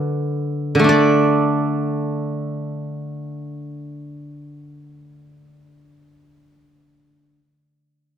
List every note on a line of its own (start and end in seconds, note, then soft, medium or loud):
0.00 0.74 D3 soft
0.00 0.13 F#4 medium
0.00 0.68 A4 medium
0.00 0.73 B4 medium
0.00 0.76 D5 medium
0.75 7.38 D3 soft
0.79 6.45 A3 soft
0.84 5.60 D4 soft
0.89 4.70 D5 medium